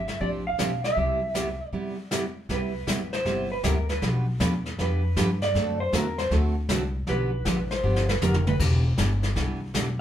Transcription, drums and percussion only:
0.08 snare soft
0.20 brush sweep soft
0.20 kick soft
0.59 snare medium
0.59 hi-hat pedal medium
0.84 snare soft
0.97 brush sweep soft
0.97 kick soft
1.35 snare medium
1.35 hi-hat pedal medium
1.73 brush sweep soft
1.73 kick soft
2.11 snare medium
2.11 hi-hat pedal medium
2.49 brush sweep soft
2.49 kick soft
2.49 snare soft
2.87 kick soft
2.87 snare medium
2.87 hi-hat pedal medium
3.13 snare soft
3.25 brush sweep soft
3.25 kick soft
3.25 snare soft
3.64 kick soft
3.64 snare medium
3.64 hi-hat pedal medium
3.89 snare soft
4.02 brush sweep soft
4.02 kick soft
4.02 snare soft
4.40 kick soft
4.40 snare medium
4.40 hi-hat pedal medium
4.66 snare soft
4.78 brush sweep soft
4.78 kick soft
4.78 snare soft
5.17 kick soft
5.17 snare medium
5.17 hi-hat pedal medium
5.42 snare soft
5.55 brush sweep medium
5.55 kick soft
5.55 snare soft
5.93 kick soft
5.93 snare medium
5.93 hi-hat pedal medium
6.18 snare soft
6.31 brush sweep soft
6.31 kick soft
6.31 snare soft
6.69 kick soft
6.69 snare medium
6.69 hi-hat pedal medium
7.07 brush sweep soft
7.07 kick soft
7.07 snare soft
7.45 kick soft
7.45 snare medium
7.45 hi-hat pedal medium
7.71 snare soft
7.96 snare medium
8.09 snare medium
8.22 hi-hat pedal medium
8.22 mid tom medium
8.34 mid tom medium
8.47 mid tom medium
8.60 brush sweep soft
8.60 kick medium
8.60 snare soft
8.60 crash medium
8.98 kick soft
8.98 snare medium
8.98 hi-hat pedal medium
9.23 snare soft
9.36 brush sweep soft
9.36 kick soft
9.36 snare soft
9.74 kick soft
9.74 snare medium
9.74 hi-hat pedal medium

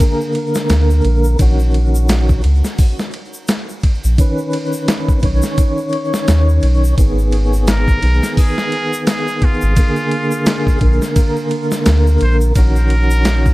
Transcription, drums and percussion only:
0.00 kick loud
0.00 ride medium
0.00 shaker medium
0.21 shaker soft
0.35 ride medium
0.55 snare medium
0.55 shaker medium
0.69 snare loud
0.69 ride medium
0.69 shaker medium
0.90 shaker soft
1.05 ride medium
1.24 shaker medium
1.39 kick loud
1.39 ride medium
1.39 shaker medium
1.59 shaker soft
1.74 ride medium
1.95 shaker medium
2.09 snare loud
2.09 ride medium
2.09 shaker medium
2.29 kick medium
2.29 shaker soft
2.44 ride medium
2.64 snare soft
2.64 shaker medium
2.79 kick loud
2.79 open hi-hat medium
2.79 shaker medium
2.99 snare soft
2.99 shaker soft
3.14 ride medium
3.33 shaker medium
3.48 snare loud
3.48 ride medium
3.48 shaker medium
3.69 shaker soft
3.83 kick medium
3.83 ride medium
4.04 shaker medium
4.18 kick loud
4.18 ride medium
4.18 shaker medium
4.38 shaker soft
4.53 ride medium
4.73 shaker medium
4.88 snare loud
4.88 ride medium
4.88 shaker medium
5.09 kick medium
5.09 shaker soft
5.23 kick medium
5.23 ride medium
5.42 snare soft
5.42 shaker medium
5.58 kick loud
5.58 ride medium
5.58 shaker medium
5.78 shaker soft
5.93 ride medium
6.14 snare medium
6.14 shaker medium
6.28 snare loud
6.28 ride medium
6.28 shaker medium
6.49 shaker soft
6.63 ride medium
6.84 shaker medium
6.98 kick loud
6.98 ride medium
6.98 shaker medium
7.19 shaker soft
7.32 ride medium
7.53 shaker medium
7.67 snare loud
7.67 ride medium
7.67 shaker medium
7.88 kick medium
7.88 shaker soft
8.02 ride medium
8.23 snare soft
8.23 shaker medium
8.37 kick loud
8.37 open hi-hat medium
8.37 shaker medium
8.58 snare medium
8.58 shaker soft
8.72 ride medium
8.93 shaker medium
9.07 snare loud
9.07 ride medium
9.07 shaker medium
9.28 shaker soft
9.42 kick medium
9.42 ride medium
9.61 shaker medium
9.76 kick loud
9.76 ride medium
9.76 shaker medium
9.96 shaker soft
10.11 ride medium
10.31 shaker medium
10.46 snare loud
10.46 ride medium
10.46 shaker medium
10.67 kick medium
10.67 shaker soft
10.81 kick medium
10.81 ride medium
11.02 snare soft
11.02 shaker medium
11.16 kick loud
11.16 ride medium
11.16 shaker medium
11.36 shaker soft
11.51 ride medium
11.71 snare medium
11.71 shaker medium
11.86 snare loud
11.86 ride medium
11.86 shaker medium
12.07 shaker soft
12.21 ride medium
12.41 shaker medium
12.55 kick loud
12.55 ride medium
12.55 shaker medium
12.76 shaker soft
12.90 ride medium
13.11 shaker medium
13.25 snare loud
13.25 ride medium
13.25 shaker medium
13.46 kick medium
13.46 shaker soft

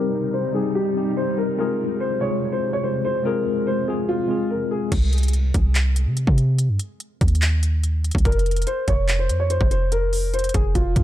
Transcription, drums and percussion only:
4.92 kick loud
4.92 closed hi-hat medium
4.92 crash loud
5.13 closed hi-hat soft
5.18 closed hi-hat soft
5.23 closed hi-hat medium
5.28 closed hi-hat medium
5.33 closed hi-hat medium
5.54 kick medium
5.54 closed hi-hat medium
5.75 clap loud
5.75 closed hi-hat medium
5.96 closed hi-hat medium
6.17 closed hi-hat medium
6.27 kick medium
6.38 closed hi-hat medium
6.59 closed hi-hat medium
6.79 closed hi-hat medium
7.00 closed hi-hat medium
7.21 kick medium
7.21 closed hi-hat medium
7.28 closed hi-hat medium
7.35 closed hi-hat medium
7.42 clap loud
7.42 closed hi-hat medium
7.63 closed hi-hat medium
7.84 closed hi-hat medium
8.04 closed hi-hat medium
8.11 kick medium
8.11 closed hi-hat medium
8.18 closed hi-hat medium
8.25 kick loud
8.25 closed hi-hat medium
8.32 closed hi-hat medium
8.39 closed hi-hat medium
8.46 closed hi-hat soft
8.51 closed hi-hat soft
8.56 closed hi-hat medium
8.62 closed hi-hat medium
8.67 closed hi-hat medium
8.88 kick medium
8.88 closed hi-hat medium
9.09 clap loud
9.09 closed hi-hat medium
9.29 closed hi-hat medium
9.50 closed hi-hat medium
9.61 kick loud
9.71 closed hi-hat medium
9.92 closed hi-hat medium
10.13 open hi-hat medium
10.34 closed hi-hat soft
10.39 closed hi-hat soft
10.44 closed hi-hat medium
10.49 closed hi-hat medium
10.54 kick medium
10.54 closed hi-hat medium
10.75 kick medium
10.75 closed hi-hat medium
10.96 kick medium
10.96 closed hi-hat medium

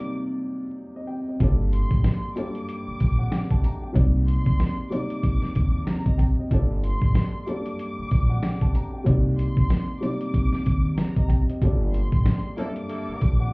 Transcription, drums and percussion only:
1.40 kick loud
1.40 closed hi-hat loud
1.72 closed hi-hat medium
1.72 tambourine medium
1.91 kick medium
2.04 snare loud
2.04 closed hi-hat loud
2.36 closed hi-hat medium
2.36 tambourine medium
2.55 closed hi-hat medium
2.69 closed hi-hat medium
3.00 kick medium
3.00 closed hi-hat medium
3.00 tambourine medium
3.32 snare loud
3.32 closed hi-hat loud
3.51 kick loud
3.51 closed hi-hat medium
3.64 closed hi-hat medium
3.64 tambourine medium
3.96 kick loud
3.96 closed hi-hat loud
4.28 closed hi-hat medium
4.28 tambourine medium
4.46 kick medium
4.60 snare loud
4.60 closed hi-hat loud
4.91 closed hi-hat medium
4.91 tambourine medium
5.10 closed hi-hat medium
5.23 kick loud
5.23 closed hi-hat medium
5.42 snare soft
5.55 kick loud
5.55 closed hi-hat medium
5.55 tambourine medium
5.87 snare loud
5.87 closed hi-hat loud
6.06 kick loud
6.06 closed hi-hat medium
6.19 kick medium
6.19 closed hi-hat medium
6.19 tambourine medium
6.51 kick loud
6.51 closed hi-hat loud
6.83 closed hi-hat medium
6.83 tambourine medium
7.02 kick medium
7.15 snare loud
7.15 closed hi-hat loud
7.47 closed hi-hat medium
7.47 tambourine medium
7.66 closed hi-hat medium
7.79 closed hi-hat medium
8.11 kick medium
8.11 closed hi-hat medium
8.11 tambourine medium
8.43 snare loud
8.43 closed hi-hat loud
8.61 kick loud
8.61 closed hi-hat medium
8.75 closed hi-hat medium
8.75 tambourine medium
9.06 kick loud
9.06 closed hi-hat loud
9.38 closed hi-hat medium
9.38 tambourine medium
9.57 kick loud
9.70 snare loud
9.70 closed hi-hat loud
10.02 closed hi-hat medium
10.02 tambourine medium
10.21 closed hi-hat medium
10.34 kick loud
10.34 closed hi-hat medium
10.53 snare soft
10.66 kick medium
10.66 closed hi-hat medium
10.66 tambourine medium
10.98 snare loud
10.98 closed hi-hat loud
11.16 kick loud
11.16 closed hi-hat medium
11.30 kick medium
11.30 closed hi-hat medium
11.30 tambourine medium
11.50 closed hi-hat soft
11.62 kick loud
11.62 closed hi-hat loud
11.94 closed hi-hat medium
11.94 tambourine medium
12.12 kick loud
12.26 snare loud
12.26 closed hi-hat loud
12.57 closed hi-hat medium
12.57 tambourine medium
12.76 closed hi-hat medium
12.90 closed hi-hat medium
13.21 kick loud
13.21 closed hi-hat medium
13.21 tambourine medium

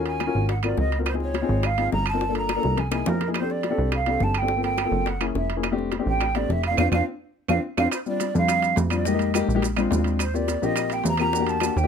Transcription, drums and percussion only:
0.06 high bongo soft
0.06 high timbale medium
0.20 high bongo medium
0.20 high timbale medium
0.20 claves medium
0.49 high bongo medium
0.49 high timbale medium
0.63 high bongo soft
0.63 high timbale medium
0.63 claves medium
0.77 high bongo soft
0.77 low bongo medium
0.92 high bongo soft
0.92 high timbale medium
1.06 high bongo medium
1.06 high timbale medium
1.06 claves medium
1.20 high bongo soft
1.34 high bongo medium
1.34 high timbale medium
1.63 high bongo medium
1.63 high timbale medium
1.63 claves medium
1.78 high bongo soft
1.78 high timbale medium
1.92 high bongo soft
1.92 low bongo medium
2.06 high bongo soft
2.06 high timbale medium
2.06 claves medium
2.21 high bongo medium
2.35 high bongo soft
2.35 high timbale medium
2.49 high bongo medium
2.49 high timbale medium
2.49 claves medium
2.63 high bongo medium
2.77 low bongo medium
2.77 high timbale medium
2.92 low bongo medium
2.92 high timbale medium
2.92 claves medium
3.06 low bongo medium
3.06 low timbale medium
3.21 low bongo medium
3.21 high timbale medium
3.34 high bongo medium
3.34 high timbale medium
3.34 claves medium
3.50 high bongo soft
3.63 high bongo medium
3.63 high timbale medium
3.92 high bongo medium
3.92 high timbale medium
3.92 claves medium
4.06 high bongo soft
4.06 high timbale medium
4.20 high bongo soft
4.20 low bongo medium
4.34 high bongo soft
4.34 high timbale medium
4.34 claves medium
4.48 high bongo medium
4.63 high bongo soft
4.63 high timbale medium
4.78 high bongo medium
4.78 high timbale medium
4.78 claves medium
5.06 high bongo medium
5.06 high timbale medium
5.20 high bongo soft
5.20 high timbale medium
5.20 claves medium
5.35 high bongo soft
5.35 low bongo medium
5.50 high bongo soft
5.50 high timbale medium
5.63 high bongo medium
5.63 high timbale medium
5.63 claves medium
5.79 high bongo soft
5.92 high bongo medium
5.92 high timbale medium
6.21 high bongo medium
6.21 high timbale medium
6.21 claves medium
6.35 high bongo soft
6.35 high timbale medium
6.50 high bongo soft
6.50 low bongo medium
6.63 high bongo soft
6.63 high timbale medium
6.63 claves medium
6.77 high bongo medium
6.77 high timbale medium
6.77 claves loud
6.92 high bongo loud
6.92 high timbale medium
6.92 claves medium
7.48 high bongo medium
7.48 high timbale medium
7.48 claves medium
7.77 high bongo medium
7.77 high timbale medium
7.77 claves medium
7.92 high bongo medium
7.92 high timbale medium
7.92 claves medium
7.92 maracas medium
8.06 high bongo soft
8.06 maracas soft
8.20 high bongo medium
8.20 high timbale medium
8.20 maracas medium
8.35 maracas soft
8.48 high bongo medium
8.48 high timbale loud
8.48 claves medium
8.48 maracas medium
8.62 high bongo soft
8.62 high timbale medium
8.62 maracas soft
8.76 high bongo soft
8.76 low bongo medium
8.76 low timbale medium
8.76 maracas medium
8.90 high bongo soft
8.90 high timbale medium
8.90 claves medium
8.90 maracas soft
9.05 high bongo medium
9.05 maracas medium
9.19 high bongo soft
9.19 high timbale medium
9.19 maracas soft
9.34 high bongo medium
9.34 high timbale medium
9.34 claves medium
9.34 maracas medium
9.50 maracas soft
9.62 high bongo medium
9.62 high timbale medium
9.62 maracas medium
9.77 high bongo soft
9.77 high timbale medium
9.77 claves medium
9.77 maracas soft
9.91 high bongo soft
9.91 low bongo medium
9.91 low timbale medium
9.91 maracas medium
10.04 high bongo soft
10.04 high timbale medium
10.04 maracas soft
10.19 high bongo medium
10.19 high timbale loud
10.19 claves medium
10.19 maracas medium
10.34 high bongo soft
10.34 maracas soft
10.48 high bongo medium
10.48 high timbale medium
10.48 maracas medium
10.63 maracas soft
10.76 high bongo medium
10.76 high timbale loud
10.76 claves medium
10.76 maracas medium
10.90 high bongo soft
10.90 high timbale medium
10.90 maracas soft
11.04 high bongo soft
11.04 low bongo medium
11.04 low timbale medium
11.04 maracas medium
11.17 high bongo soft
11.17 high timbale medium
11.17 claves medium
11.17 maracas soft
11.33 high bongo medium
11.33 maracas medium
11.47 high bongo soft
11.47 high timbale medium
11.47 maracas soft
11.60 high bongo medium
11.60 high timbale medium
11.60 claves medium
11.60 maracas medium
11.78 maracas soft

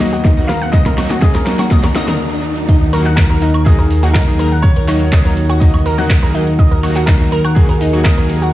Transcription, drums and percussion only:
0.00 snare medium
0.00 open hi-hat loud
0.00 shaker medium
0.13 closed hi-hat medium
0.13 shaker soft
0.25 kick loud
0.25 snare medium
0.25 closed hi-hat medium
0.25 shaker medium
0.37 closed hi-hat soft
0.37 shaker soft
0.49 snare medium
0.49 open hi-hat loud
0.49 shaker loud
0.61 closed hi-hat soft
0.61 shaker soft
0.73 kick loud
0.73 snare medium
0.73 closed hi-hat medium
0.73 shaker medium
0.86 kick medium
0.86 snare medium
0.86 closed hi-hat soft
0.86 high conga medium
0.86 shaker soft
0.98 snare medium
0.98 open hi-hat loud
0.98 high woodblock medium
0.98 shaker medium
1.10 snare medium
1.10 closed hi-hat soft
1.10 shaker soft
1.22 kick loud
1.22 snare medium
1.22 closed hi-hat medium
1.22 shaker medium
1.35 snare medium
1.35 shaker soft
1.46 snare medium
1.46 open hi-hat medium
1.46 shaker medium
1.59 snare medium
1.59 closed hi-hat medium
1.59 high woodblock medium
1.59 shaker soft
1.71 kick loud
1.71 snare loud
1.71 closed hi-hat medium
1.71 shaker medium
1.83 snare medium
1.83 closed hi-hat soft
1.83 mid tom medium
1.83 high conga medium
1.83 high woodblock medium
1.83 shaker soft
1.95 snare loud
1.95 open hi-hat loud
1.95 shaker medium
2.08 snare medium
2.08 closed hi-hat medium
2.08 mid tom medium
2.08 shaker soft
2.68 kick loud
2.68 closed hi-hat medium
2.68 ride medium
2.68 shaker soft
2.81 shaker soft
2.92 open hi-hat loud
2.92 ride medium
2.92 high woodblock medium
2.92 shaker loud
3.05 clap soft
3.05 closed hi-hat medium
3.05 shaker soft
3.17 kick loud
3.17 snare loud
3.17 clap loud
3.17 closed hi-hat medium
3.17 open hi-hat medium
3.17 shaker soft
3.30 closed hi-hat soft
3.30 shaker soft
3.42 open hi-hat medium
3.42 ride medium
3.42 shaker loud
3.54 closed hi-hat medium
3.54 high woodblock medium
3.54 shaker soft
3.66 kick loud
3.66 closed hi-hat medium
3.66 ride medium
3.66 shaker medium
3.79 snare soft
3.79 closed hi-hat soft
3.79 shaker soft
3.90 open hi-hat loud
3.90 ride medium
3.90 shaker loud
4.03 closed hi-hat medium
4.03 shaker soft
4.14 kick loud
4.14 snare loud
4.14 clap loud
4.14 closed hi-hat medium
4.14 ride medium
4.14 shaker soft
4.27 closed hi-hat soft
4.27 shaker soft
4.39 open hi-hat medium
4.39 ride medium
4.39 shaker medium
4.52 closed hi-hat medium
4.52 shaker soft
4.64 kick loud
4.64 closed hi-hat medium
4.64 ride medium
4.64 shaker medium
4.77 shaker soft
4.88 clap soft
4.88 open hi-hat loud
4.88 ride medium
4.88 high woodblock medium
4.88 shaker medium
5.01 closed hi-hat soft
5.01 shaker soft
5.12 kick loud
5.12 snare loud
5.12 clap loud
5.12 closed hi-hat medium
5.12 ride medium
5.12 shaker medium
5.25 closed hi-hat soft
5.25 shaker soft
5.37 open hi-hat medium
5.37 ride medium
5.37 shaker medium
5.49 closed hi-hat medium
5.49 ride soft
5.49 high woodblock medium
5.49 shaker soft
5.61 kick loud
5.61 closed hi-hat medium
5.61 ride medium
5.61 shaker soft
5.74 closed hi-hat soft
5.74 mid tom medium
5.74 ride soft
5.74 high woodblock medium
5.74 shaker soft
5.86 open hi-hat loud
5.86 ride medium
5.86 shaker loud
5.98 closed hi-hat medium
5.98 mid tom medium
5.98 shaker soft
6.10 kick loud
6.10 snare loud
6.10 clap loud
6.10 closed hi-hat medium
6.10 ride medium
6.10 shaker medium
6.22 snare soft
6.22 closed hi-hat soft
6.22 shaker soft
6.34 open hi-hat medium
6.34 ride medium
6.34 shaker medium
6.47 closed hi-hat medium
6.47 shaker soft
6.58 kick loud
6.58 closed hi-hat medium
6.58 ride medium
6.58 shaker medium
6.71 shaker soft
6.83 open hi-hat loud
6.83 ride medium
6.83 high woodblock medium
6.83 shaker loud
6.95 clap soft
6.95 closed hi-hat soft
6.95 shaker soft
7.08 kick loud
7.08 snare loud
7.08 clap loud
7.08 closed hi-hat medium
7.08 open hi-hat medium
7.08 shaker medium
7.20 closed hi-hat soft
7.20 shaker soft
7.32 open hi-hat medium
7.32 ride medium
7.32 shaker medium
7.45 closed hi-hat medium
7.45 high woodblock medium
7.45 shaker soft
7.56 kick loud
7.56 closed hi-hat medium
7.56 ride medium
7.56 shaker medium
7.68 snare soft
7.68 closed hi-hat soft
7.68 shaker soft
7.80 open hi-hat loud
7.80 ride medium
7.80 shaker loud
7.93 closed hi-hat medium
7.93 shaker soft
8.05 kick loud
8.05 snare loud
8.05 clap loud
8.05 closed hi-hat medium
8.05 ride medium
8.05 shaker medium
8.18 closed hi-hat soft
8.18 shaker soft
8.30 open hi-hat loud
8.30 ride medium
8.30 shaker medium
8.41 closed hi-hat soft
8.41 shaker soft

